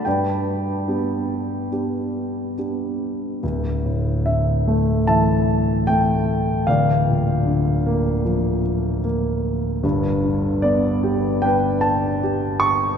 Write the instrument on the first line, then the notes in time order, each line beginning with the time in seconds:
grand piano
0.05 G2 B4 D5 G5
0.87 B3 D4 G4
1.72 B3 D4 G4
2.58 B3 D4 G4
3.43 D1 D2
3.85 A2
4.26 D3 E5
4.68 A3
5.07 E3 E5 A5
5.87 A3 G5
6.67 D1 D2 D5 F5
7.07 A#2
7.46 D3
7.86 A#3
8.25 F3
9.04 A#3
9.83 G1 G2
10.25 D3
10.62 B3 D5
11.04 G4
11.42 D4 B4 G5
11.81 A5
12.23 G4
12.60 C#6